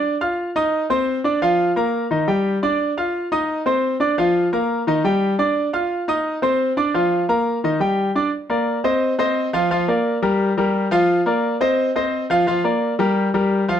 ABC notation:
X:1
M:4/4
L:1/8
Q:1/4=174
K:Cdor
V:1 name="Grand piano"
[Ddd'] [Fff']2 [Eee']2 [Ccc']2 [Ddd'] | [F,Ff]2 [B,Bb]2 [E,Ee] [G,Gg]2 [Ddd']- | [Ddd'] [Fff']2 [Eee']2 [Ccc']2 [Ddd'] | [F,Ff]2 [B,Bb]2 [E,Ee] [G,Gg]2 [Ddd']- |
[Ddd'] [Fff']2 [Eee']2 [Ccc']2 [Ddd'] | [F,Ff]2 [B,Bb]2 [E,Ee] [G,Gg]2 [Ddd'] | z [B,Bd]2 [Cce]2 [Cce]2 [F,Ff] | [F,Ff] [B,Bd]2 [G,GB]2 [G,GB]2 [F,Ff]- |
[F,Ff] [B,Bd]2 [Cce]2 [Cce]2 [F,Ff] | [F,Ff] [B,Bd]2 [G,GB]2 [G,GB]2 [F,Ff] |]